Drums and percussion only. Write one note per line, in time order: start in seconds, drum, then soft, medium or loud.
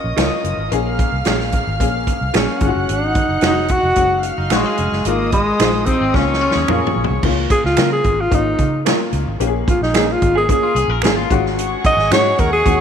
0.17 finger snap medium
0.17 snare loud
0.17 closed hi-hat medium
0.44 closed hi-hat medium
0.72 closed hi-hat medium
0.99 kick medium
0.99 closed hi-hat medium
1.25 finger snap medium
1.25 snare loud
1.25 closed hi-hat medium
1.40 snare soft
1.52 kick medium
1.52 closed hi-hat medium
1.80 kick medium
1.80 closed hi-hat medium
2.07 kick medium
2.07 closed hi-hat medium
2.34 finger snap medium
2.34 snare loud
2.34 closed hi-hat medium
2.61 kick loud
2.61 closed hi-hat medium
2.89 closed hi-hat medium
3.15 kick loud
3.15 closed hi-hat medium
3.41 finger snap medium
3.41 snare loud
3.41 closed hi-hat medium
3.68 kick medium
3.68 closed hi-hat medium
3.96 kick medium
3.96 closed hi-hat medium
4.23 closed hi-hat medium
4.50 finger snap medium
4.50 snare loud
4.50 closed hi-hat medium
4.77 closed hi-hat medium
4.92 snare soft
5.05 closed hi-hat medium
5.32 kick medium
5.32 closed hi-hat medium
5.59 finger snap medium
5.59 snare loud
5.59 closed hi-hat medium
5.86 kick medium
5.86 closed hi-hat medium
6.14 kick medium
6.14 snare soft
6.33 snare soft
6.51 snare medium
6.68 finger snap medium
6.68 mid tom medium
6.87 floor tom medium
7.04 floor tom medium
7.23 kick medium
7.23 crash medium
7.50 kick loud
7.50 closed hi-hat medium
7.65 snare soft
7.77 finger snap medium
7.77 snare loud
7.77 closed hi-hat medium
8.04 kick medium
8.04 closed hi-hat medium
8.32 kick medium
8.32 closed hi-hat medium
8.59 kick medium
8.59 closed hi-hat medium
8.86 finger snap medium
8.86 snare loud
8.86 closed hi-hat medium
9.13 closed hi-hat medium
9.40 closed hi-hat medium
9.68 kick loud
9.68 closed hi-hat medium
9.83 snare soft
9.94 finger snap medium
9.94 snare loud
9.94 closed hi-hat medium
10.22 kick medium
10.22 closed hi-hat medium
10.49 kick medium
10.49 closed hi-hat medium
10.76 closed hi-hat medium
11.02 finger snap loud
11.02 snare loud
11.02 closed hi-hat medium
11.31 kick loud
11.31 closed hi-hat medium
11.46 snare soft
11.59 closed hi-hat medium
11.84 kick loud
11.84 closed hi-hat medium
11.99 snare soft
12.11 finger snap loud
12.11 snare loud
12.11 closed hi-hat medium
12.38 kick medium
12.38 closed hi-hat medium
12.66 kick medium
12.66 closed hi-hat medium